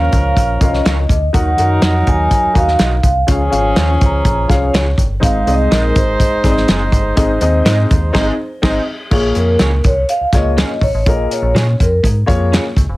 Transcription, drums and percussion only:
0.12 kick medium
0.12 closed hi-hat medium
0.37 kick medium
0.37 closed hi-hat medium
0.61 kick medium
0.61 closed hi-hat medium
0.74 snare soft
0.86 snare loud
0.86 closed hi-hat medium
1.09 kick medium
1.09 closed hi-hat medium
1.34 kick loud
1.34 closed hi-hat loud
1.58 closed hi-hat medium
1.82 snare loud
1.82 closed hi-hat medium
2.07 kick medium
2.07 closed hi-hat medium
2.31 kick medium
2.31 closed hi-hat medium
2.55 kick medium
2.55 closed hi-hat medium
2.68 snare soft
2.79 snare loud
2.79 closed hi-hat medium
3.03 kick medium
3.03 closed hi-hat medium
3.28 kick loud
3.28 closed hi-hat loud
3.53 closed hi-hat medium
3.76 snare loud
3.76 closed hi-hat medium
4.01 kick medium
4.01 closed hi-hat medium
4.25 kick medium
4.25 closed hi-hat medium
4.50 kick medium
4.50 snare soft
4.50 closed hi-hat medium
4.74 snare loud
4.74 closed hi-hat medium
4.98 kick medium
4.98 closed hi-hat medium
5.23 kick loud
5.23 closed hi-hat loud
5.47 closed hi-hat medium
5.72 snare loud
5.72 closed hi-hat medium
5.96 kick medium
5.96 closed hi-hat medium
6.20 kick medium
6.20 closed hi-hat medium
6.44 kick medium
6.44 snare soft
6.44 closed hi-hat medium
6.57 snare soft
6.68 snare loud
6.68 closed hi-hat medium
6.92 kick medium
6.92 closed hi-hat medium
7.17 kick loud
7.17 closed hi-hat loud
7.41 closed hi-hat medium
7.66 snare loud
7.66 closed hi-hat medium
7.91 kick medium
7.91 closed hi-hat medium
8.15 kick loud
8.15 snare loud
8.15 crash medium
8.63 kick loud
8.63 snare loud
8.63 crash medium
9.11 kick loud
9.11 crash loud
9.35 closed hi-hat medium
9.59 snare loud
9.59 closed hi-hat medium
9.84 kick medium
9.84 closed hi-hat medium
10.09 closed hi-hat medium
10.33 kick medium
10.33 snare soft
10.33 closed hi-hat medium
10.58 snare loud
10.58 closed hi-hat medium
10.81 kick medium
10.81 open hi-hat soft
11.06 kick loud
11.06 closed hi-hat loud
11.31 closed hi-hat medium
11.56 snare loud
11.56 closed hi-hat medium
11.80 kick medium
11.80 closed hi-hat medium
12.04 kick medium
12.04 closed hi-hat medium
12.28 kick medium
12.28 closed hi-hat medium
12.53 snare loud
12.53 closed hi-hat medium
12.77 kick medium
12.77 closed hi-hat medium

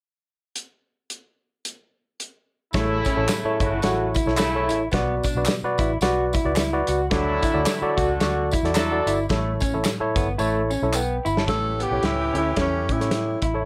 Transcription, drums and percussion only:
0.56 closed hi-hat medium
1.10 closed hi-hat soft
1.65 closed hi-hat medium
2.20 closed hi-hat soft
2.73 kick medium
2.73 snare loud
2.73 closed hi-hat medium
2.73 tambourine soft
3.05 kick medium
3.05 closed hi-hat medium
3.05 tambourine medium
3.28 snare loud
3.28 clap medium
3.28 closed hi-hat medium
3.28 tambourine medium
3.60 kick medium
3.60 closed hi-hat medium
3.60 tambourine soft
3.82 snare loud
3.82 closed hi-hat medium
3.82 tambourine medium
4.14 kick medium
4.14 closed hi-hat medium
4.14 tambourine medium
4.28 snare soft
4.37 snare loud
4.37 clap medium
4.37 closed hi-hat medium
4.37 tambourine medium
4.69 closed hi-hat medium
4.69 tambourine medium
4.91 kick medium
4.91 snare loud
4.91 closed hi-hat medium
4.91 tambourine soft
5.23 kick medium
5.23 closed hi-hat medium
5.23 tambourine medium
5.45 snare loud
5.45 clap medium
5.45 closed hi-hat medium
5.45 tambourine medium
5.78 kick loud
5.78 closed hi-hat medium
5.78 tambourine soft
6.01 snare medium
6.01 closed hi-hat medium
6.01 tambourine medium
6.33 kick medium
6.33 closed hi-hat medium
6.33 tambourine medium
6.56 snare loud
6.56 clap medium
6.56 closed hi-hat loud
6.56 tambourine medium
6.87 closed hi-hat medium
6.87 tambourine medium
7.11 kick medium
7.11 snare loud
7.11 closed hi-hat medium
7.43 kick medium
7.43 closed hi-hat medium
7.43 tambourine medium
7.66 snare medium
7.66 clap medium
7.66 closed hi-hat medium
7.66 tambourine medium
7.98 kick medium
7.98 closed hi-hat medium
7.98 tambourine soft
8.20 snare loud
8.20 closed hi-hat medium
8.20 tambourine medium
8.52 kick medium
8.52 closed hi-hat medium
8.52 tambourine medium
8.65 snare soft
8.65 closed hi-hat soft
8.75 snare loud
8.75 clap medium
8.75 closed hi-hat medium
8.75 tambourine medium
9.07 closed hi-hat medium
9.07 tambourine medium
9.29 kick medium
9.29 snare medium
9.29 closed hi-hat medium
9.29 tambourine soft
9.60 kick medium
9.60 closed hi-hat medium
9.60 tambourine soft
9.84 snare medium
9.84 clap medium
9.84 closed hi-hat medium
9.84 tambourine medium
10.16 kick medium
10.16 closed hi-hat medium
10.16 tambourine soft
10.39 tambourine medium
10.71 tambourine medium
10.93 clap medium
10.93 tambourine medium
11.26 tambourine medium
11.37 snare medium
11.48 kick medium
11.48 snare loud
11.48 closed hi-hat medium
11.80 closed hi-hat medium
12.03 snare medium
12.03 closed hi-hat medium
12.35 closed hi-hat medium
12.56 kick medium
12.56 snare medium
12.56 closed hi-hat medium
12.89 kick medium
12.89 closed hi-hat medium
13.01 snare soft
13.01 closed hi-hat medium
13.11 snare loud
13.11 closed hi-hat loud
13.42 kick medium
13.42 closed hi-hat medium

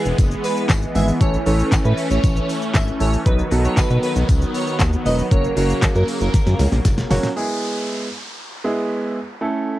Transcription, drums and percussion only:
0.05 shaker medium
0.18 kick loud
0.18 closed hi-hat medium
0.18 tambourine medium
0.18 shaker medium
0.31 shaker medium
0.44 open hi-hat medium
0.44 tambourine medium
0.44 shaker medium
0.57 shaker medium
0.69 kick loud
0.69 snare loud
0.69 clap loud
0.69 closed hi-hat medium
0.69 tambourine medium
0.69 shaker medium
0.82 shaker medium
0.95 open hi-hat medium
0.95 tambourine medium
0.95 shaker medium
1.08 shaker medium
1.21 kick loud
1.21 closed hi-hat medium
1.21 tambourine soft
1.21 shaker medium
1.34 shaker soft
1.46 open hi-hat medium
1.46 tambourine medium
1.46 shaker medium
1.60 shaker medium
1.72 kick loud
1.72 snare loud
1.72 clap loud
1.72 closed hi-hat loud
1.72 tambourine loud
1.72 shaker loud
1.85 shaker medium
1.97 open hi-hat medium
1.97 tambourine soft
1.97 shaker medium
2.10 shaker medium
2.24 kick loud
2.24 closed hi-hat medium
2.24 tambourine medium
2.24 shaker medium
2.36 shaker medium
2.49 open hi-hat medium
2.49 tambourine medium
2.49 shaker medium
2.62 shaker medium
2.74 kick loud
2.74 snare loud
2.74 clap loud
2.74 closed hi-hat medium
2.74 tambourine medium
2.74 shaker medium
2.87 shaker medium
3.00 open hi-hat medium
3.00 tambourine medium
3.00 shaker medium
3.13 shaker medium
3.26 kick loud
3.26 closed hi-hat medium
3.26 shaker medium
3.39 shaker soft
3.51 open hi-hat medium
3.51 tambourine medium
3.51 shaker medium
3.65 shaker medium
3.77 kick loud
3.77 snare medium
3.77 clap loud
3.77 closed hi-hat loud
3.77 tambourine medium
3.77 shaker medium
3.90 shaker medium
4.03 open hi-hat medium
4.03 tambourine soft
4.03 shaker medium
4.16 shaker medium
4.29 kick loud
4.29 closed hi-hat medium
4.29 tambourine medium
4.29 shaker medium
4.42 shaker medium
4.54 open hi-hat medium
4.54 tambourine medium
4.54 shaker medium
4.67 shaker medium
4.79 kick loud
4.79 snare medium
4.79 clap loud
4.79 closed hi-hat medium
4.79 tambourine medium
4.79 shaker medium
4.93 shaker medium
5.06 open hi-hat medium
5.06 tambourine medium
5.06 shaker medium
5.18 shaker medium
5.31 kick loud
5.31 closed hi-hat medium
5.31 shaker medium
5.44 shaker soft
5.57 open hi-hat medium
5.57 tambourine medium
5.57 shaker medium
5.70 shaker medium
5.82 kick loud
5.82 snare medium
5.82 clap loud
5.82 closed hi-hat medium
5.82 tambourine medium
5.82 shaker medium
5.95 shaker medium
6.08 open hi-hat medium
6.08 shaker medium
6.21 shaker medium
6.34 kick loud
6.34 snare medium
6.34 closed hi-hat medium
6.34 tambourine medium
6.34 shaker medium
6.47 snare medium
6.47 shaker medium
6.59 snare medium
6.59 open hi-hat medium
6.59 tambourine medium
6.59 shaker medium
6.72 snare medium
6.72 shaker medium
6.85 kick loud
6.85 snare medium
6.85 closed hi-hat medium
6.85 tambourine medium
6.85 shaker medium
6.98 snare medium
6.98 shaker medium
7.11 snare loud
7.11 open hi-hat medium
7.11 tambourine medium
7.11 shaker medium
7.23 snare loud
7.23 shaker medium

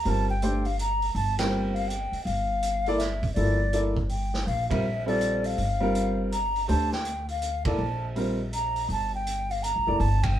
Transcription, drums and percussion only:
0.05 open hi-hat soft
0.42 closed hi-hat soft
0.65 open hi-hat soft
0.79 closed hi-hat soft
1.02 open hi-hat soft
1.16 open hi-hat soft
1.39 snare medium
1.39 ride medium
1.76 open hi-hat soft
1.90 closed hi-hat soft
2.13 open hi-hat soft
2.27 open hi-hat soft
2.63 closed hi-hat soft
2.86 open hi-hat soft
2.99 snare soft
2.99 closed hi-hat soft
3.23 kick medium
3.23 open hi-hat soft
3.36 open hi-hat soft
3.73 closed hi-hat soft
3.97 kick medium
4.09 open hi-hat soft
4.34 snare soft
4.48 open hi-hat soft
4.71 kick medium
4.71 ride medium
5.08 open hi-hat soft
5.21 closed hi-hat soft
5.44 open hi-hat soft
5.58 open hi-hat soft
5.95 closed hi-hat soft
6.32 closed hi-hat medium
6.56 open hi-hat soft
6.69 open hi-hat soft
6.92 snare soft
7.05 closed hi-hat soft
7.28 open hi-hat soft
7.42 closed hi-hat soft
7.65 kick medium
7.65 ride medium
8.16 open hi-hat soft
8.53 closed hi-hat medium
8.76 open hi-hat soft
8.90 open hi-hat soft
9.27 closed hi-hat soft
9.51 open hi-hat soft
9.64 closed hi-hat medium
10.00 open hi-hat soft
10.23 kick medium
10.23 ride medium

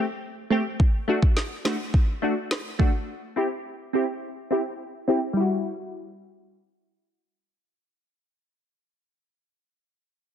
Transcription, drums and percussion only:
0.80 kick loud
1.22 kick medium
1.37 snare medium
1.65 cross-stick medium
1.65 snare loud
1.94 kick loud
2.51 cross-stick medium
2.51 snare loud
2.79 kick medium

